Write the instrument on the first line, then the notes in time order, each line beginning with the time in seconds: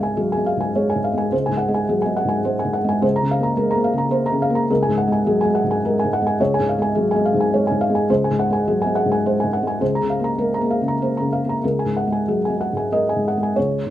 felt piano
Already playing: C#2 G#2 C#5 F5 G#5
0.00 G#3 G#5
0.17 F#3 G#4
0.32 G#5
0.37 G#3
0.46 F5
0.57 G#2 G#5
0.75 G#3 C#5
0.90 G#5
0.95 G#2
1.04 F5
1.14 G#3 G#5
1.32 C#2 C5
1.46 G#2 G#5
1.57 F#5
1.68 G#3
1.74 G#5
1.89 F#3 G#4
2.02 G#3 G#5
2.17 F#5
2.25 G#2 G#5
2.45 G#3 C5
2.59 G#5
2.65 G#2
2.73 F#5
2.84 G#3
2.89 G#5
3.02 C#2 C5
3.16 A#5
3.22 C#3
3.31 F5
3.40 A#3 A#5
3.57 G#3 A#4
3.71 A#3 A#5
3.84 F5
3.93 C#3
3.98 A#5
4.11 A#3 C5
4.26 A#5
4.32 C#3
4.42 F5
4.50 A#3
4.55 A#5
4.70 C#2 A#4
4.83 G#5
4.88 G#2
4.98 F#5
5.08 G#3
5.12 G#5
5.26 F#3 G#4
5.41 G#3 G#5
5.55 F#5
5.64 G#2
5.71 G#5
5.85 G#3 A#4
5.99 G#5
6.04 G#2
6.13 F#5
6.22 G#3
6.27 G#5
6.40 C#2 C#5
6.54 G#5
6.59 G#2
6.69 F5
6.78 G#3 G#5
6.95 F#3 G#4
7.11 G#5
7.16 G#3
7.25 F5
7.34 G#2
7.40 G#5
7.54 G#3 C#5
7.67 G#5
7.71 G#2
7.81 F5
7.90 G#3
7.95 G#5
8.10 C#2 C5
8.24 G#5
8.31 G#2
8.39 F#5
8.50 G#3 G#5
8.68 F#3 G#4
8.82 G#5
8.86 G#3
8.95 F#5
9.05 G#2
9.12 G#5
9.26 G#3 C5
9.40 G#2 G#5
9.53 F#5
9.63 G#3
9.67 G#5
9.80 C#2 C5
9.95 A#5
10.01 C#3
10.10 F5
10.20 A#3
10.24 A#5
10.38 G#3 A#4
10.54 A#5
10.61 A#3
10.71 F5
10.81 C#3
10.88 A#5
11.01 A#3 C5
11.17 C#3 A#5
11.32 F5
11.45 A#3
11.49 A#5
11.63 C#2 A#4
11.79 G#5
11.85 G#2
11.97 F#5
12.07 G#3
12.12 G#5
12.28 F#3 G#4
12.45 G#5
12.50 G#3
12.61 F#5
12.73 G#2
12.77 G#5
12.92 G#3 A#4 D#5
13.09 G#5
13.16 G#2
13.28 F#5
13.37 G#3
13.43 G#5
13.56 C#2 C#5
13.86 G#2